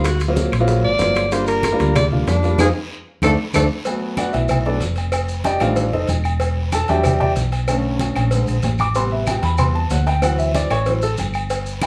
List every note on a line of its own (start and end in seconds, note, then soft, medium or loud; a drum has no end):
0.00 0.47 D2 medium
0.04 0.21 F#4 medium
0.04 high bongo medium
0.04 high timbale loud
0.04 long guiro medium
0.04 claves medium
0.04 maracas medium
0.20 high bongo soft
0.20 high conga soft
0.20 high timbale medium
0.20 maracas medium
0.28 0.50 F#3 medium
0.28 0.51 A#3 medium
0.28 0.51 C4 medium
0.28 0.51 F4 loud
0.36 high bongo medium
0.36 high conga medium
0.36 short guiro medium
0.36 maracas medium
0.52 0.82 A#1 loud
0.52 high bongo soft
0.52 high conga soft
0.52 high timbale loud
0.52 short guiro medium
0.52 claves medium
0.52 maracas soft
0.60 0.88 F#3 loud
0.60 0.88 A#3 medium
0.60 0.88 C4 medium
0.60 0.88 F4 loud
0.68 high bongo medium
0.68 long guiro medium
0.68 maracas medium
0.84 0.99 G#1 medium
0.84 1.34 D5 loud
0.84 high conga soft
0.99 1.74 G1 medium
0.99 1.22 F#3 medium
0.99 1.23 A#3 medium
0.99 1.23 C4 medium
0.99 1.23 F4 medium
0.99 high bongo soft
0.99 low bongo medium
0.99 high conga medium
0.99 high timbale medium
0.99 short guiro medium
0.99 maracas medium
1.15 high bongo soft
1.15 high timbale medium
1.15 short guiro medium
1.15 claves medium
1.15 maracas soft
1.32 1.60 G3 medium
1.32 1.60 A#3 medium
1.32 1.60 D4 medium
1.32 1.60 F4 loud
1.32 1.47 C5 loud
1.32 high bongo medium
1.32 high conga soft
1.32 high timbale medium
1.32 long guiro medium
1.32 maracas medium
1.47 1.92 A#4 loud
1.47 high bongo soft
1.47 high conga soft
1.47 high timbale medium
1.47 maracas medium
1.63 high bongo medium
1.63 high conga medium
1.63 high timbale medium
1.63 short guiro medium
1.63 claves medium
1.63 maracas medium
1.72 2.00 G3 medium
1.72 2.00 A#3 medium
1.72 2.00 D4 medium
1.72 2.00 F4 loud
1.79 2.24 D2 loud
1.79 high bongo soft
1.79 high timbale medium
1.79 short guiro medium
1.79 maracas soft
1.95 2.06 D5 loud
1.95 high bongo medium
1.95 high conga soft
1.95 low conga medium
1.95 high timbale loud
1.95 long guiro medium
1.95 claves medium
1.95 maracas medium
2.12 2.34 G3 medium
2.12 2.34 A#3 medium
2.12 2.34 D4 medium
2.12 2.34 F4 medium
2.12 high conga soft
2.12 low conga medium
2.27 2.57 F2 medium
2.27 2.57 D4 medium
2.27 high bongo soft
2.27 low bongo medium
2.27 high conga medium
2.27 high timbale medium
2.27 short guiro medium
2.27 maracas medium
2.43 2.60 G3 medium
2.43 2.60 A#3 medium
2.43 2.59 D4 medium
2.43 2.58 F4 medium
2.43 high bongo soft
2.43 high conga soft
2.43 short guiro medium
2.43 maracas soft
2.58 2.70 F2 loud
2.58 2.69 C4 loud
2.58 2.70 D#4 loud
2.58 2.69 F4 loud
2.58 2.68 G#4 loud
2.58 low bongo loud
2.58 high conga loud
2.58 high timbale loud
2.58 long guiro loud
2.58 claves loud
2.58 maracas loud
3.22 3.34 D2 medium
3.22 3.33 A3 loud
3.22 3.33 C4 loud
3.22 3.34 D4 medium
3.22 3.31 A4 loud
3.22 low bongo loud
3.22 high conga loud
3.22 high timbale loud
3.22 long guiro loud
3.22 claves loud
3.22 maracas medium
3.54 3.66 D2 loud
3.54 3.65 A3 medium
3.54 3.64 C4 loud
3.54 3.65 D4 medium
3.54 3.63 A4 loud
3.54 low bongo loud
3.54 high conga loud
3.54 high timbale loud
3.54 long guiro loud
3.54 claves loud
3.54 maracas loud
3.85 4.64 F#3 medium
3.85 4.64 A3 medium
3.85 4.65 B3 medium
3.85 cowbell loud
3.85 high conga soft
3.85 low agogo medium
3.85 long guiro medium
3.85 maracas medium
4.01 high conga soft
4.17 4.34 F#4 medium
4.17 4.34 B4 medium
4.17 4.34 D5 medium
4.17 4.34 F#5 medium
4.17 cowbell medium
4.17 high conga medium
4.17 low agogo medium
4.17 short guiro medium
4.17 claves medium
4.17 maracas medium
4.33 4.79 B1 loud
4.33 4.64 E4 medium
4.33 4.63 E5 medium
4.33 cowbell medium
4.33 high conga soft
4.33 low agogo medium
4.33 short guiro medium
4.33 maracas soft
4.49 cowbell loud
4.49 high conga soft
4.49 low conga medium
4.49 low agogo loud
4.49 long guiro medium
4.49 claves medium
4.49 maracas medium
4.65 4.80 F#3 soft
4.65 4.80 A3 soft
4.65 4.81 B3 soft
4.65 4.82 D4 medium
4.65 4.82 A4 medium
4.65 4.82 B4 medium
4.65 4.82 D5 medium
4.65 high conga soft
4.65 low agogo medium
4.80 5.56 F1 medium
4.80 cowbell medium
4.80 high conga medium
4.80 short guiro medium
4.80 maracas medium
4.96 cowbell medium
4.96 high conga soft
4.96 low agogo medium
4.96 short guiro medium
4.96 maracas soft
5.12 cowbell loud
5.12 high conga soft
5.12 low agogo loud
5.12 long guiro medium
5.12 claves medium
5.12 maracas medium
5.28 high conga soft
5.28 maracas medium
5.44 5.61 G4 medium
5.44 5.60 D5 medium
5.44 5.61 D#5 medium
5.44 5.61 G5 loud
5.44 cowbell medium
5.44 high conga medium
5.44 low agogo medium
5.44 short guiro medium
5.44 maracas medium
5.60 5.91 A1 medium
5.60 5.82 D#3 medium
5.60 5.83 G3 medium
5.60 5.83 A3 medium
5.60 5.83 D4 medium
5.60 5.91 F4 medium
5.60 5.92 C5 medium
5.60 5.91 D5 medium
5.60 5.91 F5 medium
5.60 cowbell medium
5.60 high conga soft
5.60 low agogo loud
5.60 short guiro medium
5.60 claves medium
5.60 maracas soft
5.76 cowbell loud
5.76 high conga soft
5.76 long guiro medium
5.76 maracas medium
5.92 6.08 F1 medium
5.92 6.09 D#4 medium
5.92 6.09 A4 medium
5.92 6.09 C5 medium
5.92 6.09 D#5 medium
5.92 high conga soft
5.92 low agogo medium
6.07 6.83 E1 medium
6.07 cowbell medium
6.07 high conga medium
6.07 low agogo medium
6.07 short guiro medium
6.07 maracas medium
6.24 low agogo medium
6.24 short guiro medium
6.24 claves medium
6.24 maracas soft
6.40 cowbell loud
6.40 high conga soft
6.40 low agogo medium
6.40 long guiro medium
6.40 maracas medium
6.57 high conga soft
6.72 6.89 A4 medium
6.72 6.89 A5 loud
6.72 cowbell medium
6.72 high conga medium
6.72 low agogo loud
6.72 short guiro medium
6.72 claves medium
6.72 maracas medium
6.88 7.33 E2 loud
6.88 7.10 F#3 medium
6.88 7.10 G3 medium
6.88 7.11 D4 medium
6.88 7.19 G4 medium
6.88 7.19 D5 medium
6.88 7.19 E5 medium
6.88 7.19 G5 loud
6.88 cowbell medium
6.88 low agogo medium
6.88 short guiro medium
6.88 maracas soft
7.04 cowbell loud
7.04 high conga soft
7.04 low conga medium
7.04 low agogo loud
7.04 long guiro medium
7.04 claves medium
7.04 maracas medium
7.20 7.30 G4 medium
7.20 7.30 D5 medium
7.20 7.30 E5 medium
7.20 7.30 G5 medium
7.20 high conga soft
7.20 low conga medium
7.20 low agogo medium
7.36 8.11 B1 medium
7.36 cowbell medium
7.36 high conga medium
7.36 short guiro medium
7.36 maracas medium
7.52 cowbell medium
7.52 high conga soft
7.52 low agogo medium
7.52 short guiro medium
7.52 maracas soft
7.68 8.29 D3 medium
7.68 8.29 A3 medium
7.68 8.30 C#4 medium
7.68 cowbell loud
7.68 low agogo loud
7.68 long guiro medium
7.68 claves medium
7.68 maracas medium
7.84 high conga soft
7.99 cowbell medium
7.99 high conga medium
7.99 low agogo medium
7.99 short guiro medium
7.99 maracas medium
8.16 8.46 A#1 medium
8.16 cowbell medium
8.16 high conga soft
8.16 low agogo loud
8.16 short guiro medium
8.16 claves medium
8.16 maracas soft
8.31 8.53 D3 medium
8.31 8.54 G#3 soft
8.31 8.54 C4 medium
8.31 cowbell loud
8.31 long guiro medium
8.31 maracas medium
8.47 8.63 A#1 medium
8.47 high conga soft
8.47 low agogo medium
8.47 maracas medium
8.63 9.38 A1 medium
8.63 cowbell medium
8.63 high conga medium
8.63 low timbale medium
8.63 low agogo medium
8.63 short guiro medium
8.63 maracas medium
8.78 8.96 D6 loud
8.78 high conga medium
8.78 low agogo loud
8.78 short guiro medium
8.78 claves medium
8.78 maracas soft
8.95 9.41 C3 medium
8.95 9.41 G3 medium
8.95 9.42 B3 medium
8.95 9.11 C6 medium
8.95 cowbell loud
8.95 low agogo medium
8.95 long guiro medium
8.95 maracas medium
9.12 9.27 E5 medium
9.12 high conga soft
9.27 9.43 G5 medium
9.27 cowbell medium
9.27 high conga medium
9.27 low agogo loud
9.27 short guiro medium
9.27 claves medium
9.27 maracas medium
9.42 9.87 E2 loud
9.42 9.59 B5 loud
9.42 cowbell medium
9.42 low agogo medium
9.42 short guiro medium
9.42 maracas soft
9.58 9.74 C3 medium
9.58 9.74 G3 soft
9.58 9.74 B3 medium
9.58 9.75 C6 loud
9.58 cowbell loud
9.58 high conga soft
9.58 low conga medium
9.58 low agogo loud
9.58 long guiro medium
9.58 claves medium
9.58 maracas medium
9.75 9.91 A5 medium
9.75 high conga soft
9.75 low agogo medium
9.90 10.65 D2 medium
9.90 10.07 F#5 medium
9.90 cowbell medium
9.90 high conga medium
9.90 low timbale medium
9.90 short guiro medium
9.90 maracas medium
10.07 10.22 G5 loud
10.07 cowbell medium
10.07 low agogo medium
10.07 short guiro medium
10.07 maracas soft
10.22 10.68 E3 medium
10.22 10.68 F#3 medium
10.22 10.68 C4 medium
10.22 10.38 F#5 medium
10.22 cowbell loud
10.22 low agogo loud
10.22 long guiro medium
10.22 claves medium
10.22 maracas medium
10.38 10.54 E5 medium
10.38 high conga soft
10.38 maracas medium
10.55 10.71 D5 medium
10.55 cowbell medium
10.55 high conga medium
10.55 low agogo medium
10.55 short guiro medium
10.55 maracas medium
10.70 11.15 A1 medium
10.70 10.86 C#5 medium
10.70 cowbell medium
10.70 high conga soft
10.70 low agogo loud
10.70 short guiro medium
10.70 claves medium
10.70 maracas soft
10.86 11.01 E3 medium
10.86 11.01 F#3 soft
10.86 11.02 C4 medium
10.86 11.03 C5 medium
10.86 cowbell loud
10.86 high conga soft
10.86 long guiro medium
10.86 maracas medium
11.02 11.12 A4 medium
11.02 high conga soft
11.02 low agogo medium
11.02 maracas medium
11.18 11.86 G1 medium
11.18 cowbell medium
11.18 high conga medium
11.18 low agogo medium
11.18 short guiro medium
11.18 maracas medium
11.34 low agogo medium
11.34 short guiro medium
11.34 claves medium
11.34 maracas soft
11.50 cowbell loud
11.50 high conga soft
11.50 low agogo medium
11.50 long guiro medium
11.50 maracas medium
11.66 high conga soft
11.66 maracas medium
11.82 11.86 B4 medium
11.82 11.86 F#5 medium
11.82 11.86 B5 loud
11.82 cowbell medium
11.82 high conga medium
11.82 low agogo loud
11.82 claves medium
11.82 maracas medium